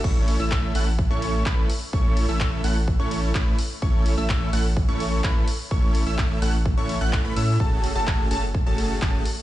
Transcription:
<<
  \new Staff \with { instrumentName = "Digital synth lead" } { \time 4/4 \key a \major \tempo 4 = 127 cis'''8. e'''8. fis'''16 r8 cis'''8. b''8 r8 | cis'''8. e'''8. fis'''16 r8 cis'''8. b''8 r8 | cis'''8. e'''8. fis'''16 r8 cis'''8. b''8 r8 | cis'''8. e'''8. fis'''16 r8 cis'''8 fis'''8 b''16 e'''8 |
a''8. a''8. a''16 r8 a''8. a''8 r8 | }
  \new Staff \with { instrumentName = "Supersaw synth" } { \time 4/4 \key a \major <a cis' e' a' cis''>8. <a cis' e' a' e''>8. <a cis' e' a' fis''>16 r8 <a cis' e' a' cis''>8. <a cis'>8 r8 | <a cis' e' a' cis''>8. <a cis' e' a' e''>8. <a cis' e' a' fis''>16 r8 <a cis' e' a' cis''>8. <a cis' a'>8 r8 | <a cis' e' a' cis''>8. <a cis' e' a' e''>8. <a cis' e' a' fis''>16 r8 <a cis' e' a' cis''>8. <a e'>8 r8 | <a cis' e' a' cis''>8. <a cis' e' a' e''>8. <a cis' e' a' fis''>16 r8 <a cis' e' a' cis''>8 <a cis' e' a' fis''>8 <a cis' e' a' b'>16 <a cis' e' a' e''>8 |
<a cis' fis' gis' a'>8. <a cis' fis' gis' a'>8. <a cis' fis' gis' a'>16 r8 <a cis' fis' gis' a'>8. <a gis' a'>8 r8 | }
  \new Staff \with { instrumentName = "Sub bass" } { \clef bass \time 4/4 \key a \major a,,8. a,,8. a,,8. a,,8. a,,8 r8 | a,,8. a,,8. a,,8. a,,8. a,,8 r8 | a,,8. a,,8. a,,8. a,,8. a,,8 r8 | a,,8. a,,8. a,,8. a,,8 a,,8 a,,16 a,8 |
fis,,8. fis,,8. fis,,8. fis,,8. fis,,8 r8 | }
  \new DrumStaff \with { instrumentName = "Drums" } \drummode { \time 4/4 <cymc bd>8 hho8 <hc bd>8 hho8 bd8 hho8 <hc bd>8 hho8 | bd8 hho8 <hc bd>8 hho8 bd8 hho8 <hc bd>8 hho8 | bd8 hho8 <hc bd>8 hho8 bd8 hho8 <hc bd>8 hho8 | bd8 hho8 <hc bd>8 hho8 bd8 hho8 <hc bd>8 hho8 |
bd8 hho8 <hc bd>8 hho8 bd8 hho8 <hc bd>8 hho8 | }
>>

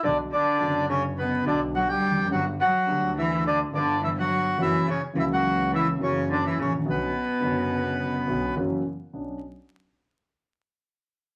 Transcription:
<<
  \new Staff \with { instrumentName = "Bandoneon" } { \time 4/4 \key b \minor \tempo 4 = 106 <d' d''>8 <d' d''>4 <cis' cis''>8 <b b'>8 <d' d''>8 <fis' fis''>16 <g' g''>8. | <fis' fis''>8 <fis' fis''>4 <e' e''>8 <d' d''>8 <d' d''>8 <e' e''>16 <fis' fis''>8. | <e' e''>8 <cis' cis''>8 <e' e''>16 <fis' fis''>8. <e' e''>8 <cis' cis''>8 <d' d''>16 <e' e''>16 <cis' cis''>8 | <b b'>2. r4 |
r1 | }
  \new Staff \with { instrumentName = "Grand piano" } { \clef bass \time 4/4 \key b \minor << { <b,, b, d fis b fis'>8 r8 <fis,, fis, d fis b fis'>4. <b,, b, d b d'>4. | <g,, g, d g b g'>8 r8 <d, d g b g'>4. <g,, g, d b b'>4. | <fis, e fis ais cis' fis'>8 r8 <cis, cis e ais cis' fis'>4. <fis, e fis ais cis' fis'>4. | <b,, b, d b cis' fis'>8 r8 <fis,, fis, d b cis' fis'>4. <b,, b, d b cis' fis'>8 <fis, e fis ais cis' fis'>8 r8 |
<b,, b cis' d'>8 r2. r8 | } \\ { r2. r8 r32 e,32 eis,32 fis,32 | r1 | r2. r8 r32 gis,,32 a,,32 ais,,32 | r1 |
r1 | } >> }
  \new Staff \with { instrumentName = "Cello" } { \clef bass \time 4/4 \key b \minor d8 d4 cis8 b,8 d8 fis16 g8. | fis8 fis4 e8 d8 d8 e16 fis8. | e8 cis8 e16 fis8. e8 cis8 d16 e16 cis8 | b,2. r4 |
r1 | }
  \new Staff \with { instrumentName = "Double bass" } { \clef bass \time 4/4 \key b \minor b,,8 r8 fis,,4. b,,4 eis,,8 | g,,8 r8 d,4. g,,4. | fis,,8 r8 cis,4. fis,,4 a,,8 | b,,8 r8 fis,,4. b,,8 fis,,8 r8 |
b,,8 r2. r8 | }
>>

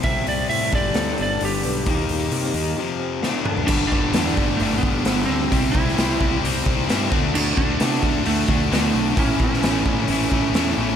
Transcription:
<<
  \new Staff \with { instrumentName = "Lead electric guitar" } { \time 4/4 \key g \major \tempo 4 = 131 e''8 d''8 e''8 d''4 d''8 g'4~ | g'2. r4 | d'8 d'4. a8 b4 c'8~ | c'8 e'4. r2 |
d'8 d'4. a4 a4 | cis'8 cis'2. r8 | }
  \new Staff \with { instrumentName = "Overdriven electric guitar" } { \time 4/4 \key g \major <c g c'>4. <g, d g>2~ <g, d g>8 | <ees bes ees'>2 <f, c f>4 <d a d'>4 | <g, d g b d'>4 <d g b d'>4 <d g b d'>8 <g b d'>8 <g, d g b d'>8 <g b d'>8 | <c g c' e'>4 <c g c' e'>4 <c g c' e'>8 <g c' e'>8 <c g c' e'>8 <d a d' fis'>8 |
<d a d' fis'>4 <d a d' fis'>4 <d a d' fis'>8 <a d' fis'>8 <d a d' fis'>8 <a d' fis'>8 | <a, e a cis' e'>4 <e a cis' e'>4 <e a cis' e'>8 <a cis' e'>8 <a, e a cis' e'>8 <a cis' e'>8 | }
  \new Staff \with { instrumentName = "Clean electric guitar" } { \clef bass \time 4/4 \key g \major c8 g8 c'8 g8 a'8 d'8 g8 b8 | ees8 g8 bes8 ees'8 f,8 c'8 d8 a8 | r1 | r1 |
r1 | r1 | }
  \new Staff \with { instrumentName = "Distorted electric guitar" } { \clef bass \time 4/4 \key g \major r1 | r1 | <g, d g>8 <g, d g>8 <g, d g>8 <g, d g>8 <g, d g>8 <g, d g>8 <g, d g>8 <g, d g>8 | <c g c'>8 <c g c'>8 <c g c'>8 <c g c'>8 <c g c'>8 <c g c'>8 <c g c'>8 <d a d'>8 |
<d a d'>8 <d a d'>8 <d a d'>8 <d a d'>8 <d a d'>8 <d a d'>8 <d a d'>8 <d a d'>8 | <a, e a>8 <a, e a>8 <a, e a>8 <a, e a>8 <a, e a>8 <a, e a>8 <a, e a>8 <a, e a>8 | }
  \new Staff \with { instrumentName = "Fingered electric bass" } { \clef bass \time 4/4 \key g \major c,8 c,8 a,8 g,,8 d,8 g,,8 g,,8 b,,8 | ees,8 ees,8 c8 ees,8 r2 | g,,8 g,,8 e,8 g,,8 g,,8 g,,8 g,,8 d,8 | c,8 c,8 c,8 c,8 c,8 c,8 g,8 d,8 |
d,8 d,8 c8 d,8 d,8 d,8 d,8 b,,8 | a,,8 a,,8 a,,8 a,,8 a,,8 a,,8 e,8 a,,8 | }
  \new DrumStaff \with { instrumentName = "Drums" } \drummode { \time 4/4 <hho bd>8 hho8 hho8 <hho bd>8 <hho sn>8 hho8 hho8 hho8 | <hho bd>8 hho8 hho8 hho8 r4 sn8 toml16 tomfh16 | <cymc bd>8 bd8 <hho sn>8 bd8 hho8 bd8 <hho sn>4 | <hho bd>8 bd16 sn16 <hho sn>8 bd8 hho8 bd8 <hho sn>8 bd8 |
cymc8 bd8 <hho sn>8 bd8 hho8 bd8 <hho sn>4 | <hho bd>8 bd16 sn16 <hho sn>8 bd8 hho8 bd8 <hho sn>4 | }
>>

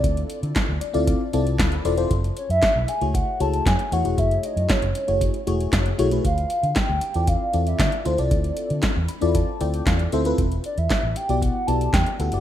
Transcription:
<<
  \new Staff \with { instrumentName = "Soft synth lead" } { \time 4/4 \key d \dorian \tempo 4 = 116 d''8. r2. r16 | r8 cis''16 e''8. gis''8 fis''8 a''8 gis''8 fis''8 | e''8 dis''8 cis''4. r4. | f''4 g''4 f''8. e''8. c''16 d''16~ |
d''8. r2. r16 | r8 d''16 e''8. g''8 fis''8 a''8 g''8 fis''8 | }
  \new Staff \with { instrumentName = "FM electric piano" } { \time 4/4 \key d \dorian << { r4. d''16 f''16 f''8 a''8 b''8 c'''8 | r1 | r1 | r1 |
r4. b''8 a''8 g''8 f''8 e''8 | r1 | } \\ { <c' e' f' a' d''>4~ <c' e' f' a' d''>16 r8 <c' e' f' a' d''>8 r16 <c' e' f' a' d''>8. r16 <c' e' f' a' d''>16 <c' e' f' a' c''>16 | r4. r16 <a e' fis' gis' cis''>8 r16 <a e' fis' gis' cis''>8. r16 <a e' fis' gis' cis''>16 <a e' fis' gis' cis''>16~ | <a e' fis' gis' cis''>4~ <a e' fis' gis' cis''>16 r8 <a e' fis' gis' cis''>8 r16 <a e' fis' gis' cis''>8. r16 <a e' fis' gis' cis''>16 <a e' fis' gis' b'>16 | r4. r16 <c' e' f' a' d''>8 r16 <c' e' f' a' d''>8. r16 <c' e' f' a' c''>16 <c' e' f' a' d''>16~ |
<c' e' f' a' d''>4~ <c' e' f' a' d''>16 r8 <c' e' f' a' d''>8 r16 <c' e' f' a' d''>8. r16 <c' e' f' a' c''>16 <c' e' f' a' b'>16 | r4. r16 <b e' fis' g' d''>8 r16 <b e' fis' g' d''>8. r16 <b e' fis' g' a'>16 <b e' fis' g' d''>16 | } >> }
  \new Staff \with { instrumentName = "Fingered electric bass" } { \clef bass \time 4/4 \key d \dorian d,8 r16 d16 r16 d,16 r16 d,8 r16 c,8 d,8 e,,8 | fis,,8 r16 fis,16 r16 b,,16 r16 cis,8 r16 cis,8 fis,16 r16 e,16 e,,16 | fis,,8 r16 fis,16 r16 fis,,16 r16 fis,,8 r16 e,,8 fis,,8 b,,8 | d,8 r16 d16 r16 d,16 r16 e,8 r16 e,8 d16 r16 d,16 c,16 |
d,8 r16 d16 r16 e,16 r16 e,8 r16 d,8 e,8 d,8 | e,,8 r16 e,16 r16 a,,16 r16 b,,8 r16 b,,8 e,16 r16 d,16 fis,,16 | }
  \new DrumStaff \with { instrumentName = "Drums" } \drummode { \time 4/4 <hh bd>16 hh16 hh16 hh16 <hc hh bd sn>8 hh16 hh16 <hh bd>8 hh16 hh16 <hc hh bd sn>16 hh16 hh16 hh16 | <hh bd>16 hh16 hh16 hh16 <hc hh bd sn>8 hh16 hh16 <hh bd>8 hh16 hh16 <hc hh bd sn>16 hh16 hh16 hh16 | <hh bd>16 hh16 hh16 hh16 <hc hh bd sn>16 hh16 hh16 hh16 <hh bd>16 hh16 hh16 hh16 <hc hh bd sn>16 hh16 hh16 hh16 | <hh bd>16 hh16 hh16 hh16 <hc hh bd sn>8 hh16 hh16 <hh bd>8 hh16 hh16 <hc hh bd sn>16 hh16 hh16 hh16 |
<hh bd>16 hh16 hh16 hh16 <hc hh bd sn>8 hh16 hh16 <hh bd>8 hh16 hh16 <hc hh bd sn>16 hh16 hh16 hh16 | <hh bd>16 hh16 hh16 hh16 <hc hh bd sn>8 hh16 hh16 <hh bd>8 hh16 hh16 <hc hh bd sn>16 hh16 hh16 hh16 | }
>>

